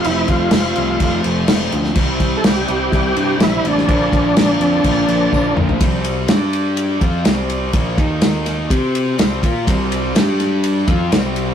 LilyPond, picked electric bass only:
\new Staff \with { instrumentName = "Picked electric bass" } { \clef bass \time 4/4 \key c \mixolydian \tempo 4 = 125 f,,8 f,,8 f,,8 c,8 f,,8 f,,8 f,,8 d,8 | c,4 c,8 c,8 c,8 g,8 bes,,8 a,,8 | bes,,8 bes,,8 bes,,8 f,8 bes,,8 bes,,8 bes,,8 bes,,8 | c,4 g,4. f,8 c,4 |
bes,,8 ees,4. c4 c,8 bes,8 | c,4 g,4. f,8 c,4 | }